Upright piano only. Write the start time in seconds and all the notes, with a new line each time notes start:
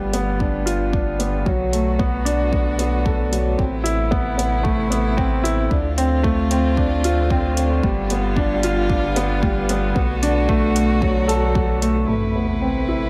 Already playing: G3 B3
0.13 B3
0.40 D4
0.66 F4
0.93 D4
1.19 B3
1.46 F#3
1.73 A3
1.99 B3
2.25 D4
2.52 B3
2.79 B3
3.05 A4
3.32 F#3
3.58 C4
3.84 E4
4.11 B3
4.38 B3
4.63 A3
4.90 B3
5.17 C4
5.44 E4
5.71 D4
5.98 C4
6.23 A3
6.51 C4
6.78 D4
7.04 F4
7.31 C4
7.57 C4
7.83 G3
8.11 B3
8.37 D4
8.64 F4
8.90 D4
9.16 B3
9.43 G3
9.70 B3
9.95 B3
10.23 D4
10.49 A3
10.75 A3
11.01 F#3
11.28 A4
11.55 F#3
11.82 A3
12.08 A3
12.35 B3
12.61 C4
12.88 E4